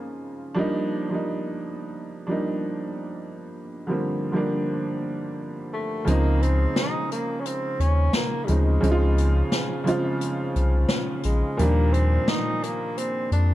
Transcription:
Already playing: upright piano C#3 F3 G#3 C4 D#4 F4 C5, tenor saxophone A#3
0.55 upright piano F3 G3 A#3 D4
0.59 upright piano D#4
1.10 upright piano F3 G3 A#3 D4
1.14 upright piano D#4
2.27 upright piano F3 G3 A#3 D4
2.31 upright piano D#4
3.87 upright piano D3 F3 G3 A#3
3.91 upright piano C4
4.32 upright piano D3 F3 G3 A#3
4.37 upright piano D4
5.73 tenor saxophone A3
6.05 sub bass C#2, upright piano C#3 F3 G#3 C4, tenor saxophone A#3, closed hi-hat
6.09 upright piano D#4
6.43 tenor saxophone C4, closed hi-hat
6.76 tenor saxophone D#4, snare, closed hi-hat
7.11 tenor saxophone A#3, closed hi-hat
7.40 tenor saxophone C#4
7.45 tenor saxophone C4, closed hi-hat
7.79 sub bass D#2, tenor saxophone C#4, closed hi-hat
8.13 tenor saxophone A#3, snare, closed hi-hat
8.44 upright piano C#3 F3, tenor saxophone G3, closed hi-hat
8.49 sub bass D2, upright piano G#3 C4 D#4, tenor saxophone G#3
8.81 sub bass C#2, upright piano C#3 F3 G#3 C4, closed hi-hat
8.85 upright piano D#4
8.92 upright piano F4
9.18 closed hi-hat
9.52 snare, closed hi-hat
9.84 upright piano C#3 F3 G#3 C4, closed hi-hat
9.88 upright piano F4
10.21 closed hi-hat
10.56 sub bass C2, closed hi-hat
10.89 snare, closed hi-hat
11.23 sub bass A#1, tenor saxophone G#3, closed hi-hat
11.57 sub bass D#2, upright piano A#2 D#3 F3 G3, tenor saxophone A#3, closed hi-hat
11.62 upright piano D4
11.93 tenor saxophone C4, closed hi-hat
12.28 tenor saxophone D#4, snare, closed hi-hat
12.63 tenor saxophone A#3, closed hi-hat
12.98 tenor saxophone C4, closed hi-hat
13.31 sub bass F2, tenor saxophone D4, closed hi-hat

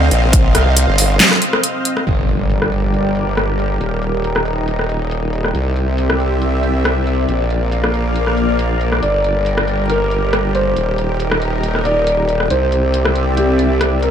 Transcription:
Already playing: analog synth pad C4 C5 D#5 F5
0.11 wobble bass A#1, closed hi-hat
0.33 kick, closed hi-hat
0.55 wobble bass C2, cross-stick, closed hi-hat
0.77 closed hi-hat
0.88 wobble bass G1
0.98 open hi-hat
1.20 snare, clap, closed hi-hat
1.32 cross-stick
1.42 closed hi-hat
1.53 cross-stick
1.63 closed hi-hat
1.85 closed hi-hat
1.97 cross-stick
2.07 wobble bass G1, analog synth pad G3 G4 A#4 D5, closed hi-hat, crash, impact
2.29 closed hi-hat
2.50 closed hi-hat
2.62 cross-stick
2.72 closed hi-hat
2.94 closed hi-hat
3.16 closed hi-hat
3.37 cross-stick, closed hi-hat
3.59 closed hi-hat
3.81 wobble bass D#1, analog synth pad D#4, closed hi-hat
4.03 closed hi-hat
4.24 closed hi-hat
4.36 cross-stick
4.46 closed hi-hat
4.68 closed hi-hat
4.79 cross-stick
4.90 closed hi-hat
5.11 closed hi-hat
5.33 closed hi-hat
5.44 cross-stick
5.55 wobble bass C2, analog synth pad C4 G4 D5 E5, closed hi-hat
5.76 closed hi-hat
5.98 closed hi-hat
6.10 cross-stick
6.20 closed hi-hat
6.42 closed hi-hat
6.63 closed hi-hat
6.85 cross-stick, closed hi-hat
7.07 closed hi-hat
7.29 wobble bass A#1, analog synth pad A#3 A#4 F5, closed hi-hat
7.50 closed hi-hat
7.72 closed hi-hat
7.84 cross-stick
7.94 closed hi-hat
8.16 closed hi-hat
8.27 cross-stick
8.37 closed hi-hat
8.59 closed hi-hat
8.81 closed hi-hat
8.92 cross-stick
9.03 wobble bass G1, analog synth pad G3 G4 A#4, felt piano D5, closed hi-hat
9.24 closed hi-hat
9.46 closed hi-hat
9.58 cross-stick
9.68 closed hi-hat
9.90 felt piano A#4, closed hi-hat
10.11 closed hi-hat
10.33 cross-stick, closed hi-hat
10.55 felt piano C5, closed hi-hat
10.77 wobble bass D#1, analog synth pad D#4 A#4, closed hi-hat
10.98 closed hi-hat
11.20 closed hi-hat
11.31 cross-stick
11.42 closed hi-hat
11.63 closed hi-hat
11.75 cross-stick
11.85 felt piano D5, closed hi-hat
12.07 closed hi-hat
12.29 closed hi-hat
12.40 cross-stick
12.50 wobble bass C2, analog synth pad C4 D5 E5, felt piano C5, closed hi-hat
12.72 closed hi-hat
12.94 closed hi-hat
13.05 cross-stick
13.16 closed hi-hat
13.37 felt piano G4, closed hi-hat
13.59 closed hi-hat
13.81 cross-stick, closed hi-hat
14.03 felt piano A#4, closed hi-hat

